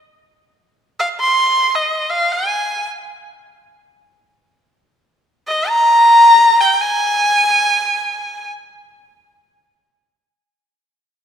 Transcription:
1.00 1.08 F5 medium
1.20 1.77 C6 loud
1.75 2.12 D#5 medium
2.10 2.34 F5 medium
2.32 2.88 G#5 medium
5.48 5.70 D#5 loud
5.68 6.62 A#5 loud
6.61 6.82 G5 loud
6.81 8.49 G#5 loud

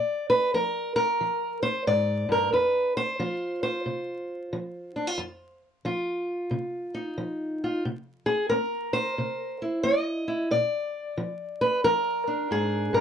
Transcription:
0.00 0.48 A#2 medium
0.00 0.29 D5 loud
0.30 0.53 B4 medium
0.54 1.15 F3 medium
0.54 0.95 A#4 loud
0.96 1.62 A#4 medium
1.21 1.81 F3 medium
1.63 1.86 C5 loud
1.87 2.28 G#2 medium
1.87 2.29 D5 loud
2.29 2.52 G2 medium
2.29 2.53 A#4 medium
2.52 3.14 F2 medium
2.52 2.95 B4 medium
2.97 3.62 C5 loud
3.19 3.81 F3 medium
3.19 4.95 F4 medium
3.63 5.62 C5 medium
3.86 4.47 C3 medium
4.53 5.14 F3 medium
4.96 5.07 D4 soft
5.07 5.18 F4 soft
5.18 5.80 F2 medium
5.85 6.46 F3 medium
5.85 7.61 F4 medium
6.51 7.13 C3 medium
6.95 7.82 D#4 soft
7.18 7.79 F3 medium
7.64 7.83 F4 medium
7.85 8.47 C3 medium
8.26 8.49 G#4 medium
8.49 9.13 C4 medium
8.49 9.60 A#4 medium
8.93 9.83 C5 medium
9.18 9.80 C3 medium
9.62 10.27 E4 soft
9.83 10.46 C4 medium
9.83 10.50 D#5 loud
10.28 10.48 E4 soft
10.51 11.13 A#2 medium
10.51 11.60 D5 medium
11.18 11.79 F3 medium
11.61 11.84 B4 medium
11.84 12.46 F3 medium
11.84 12.93 A#4 loud
12.27 13.01 D4 soft
12.51 12.92 G#2 medium
12.51 13.01 G#4 medium
12.93 13.01 G2 medium
12.93 13.01 A#4 medium

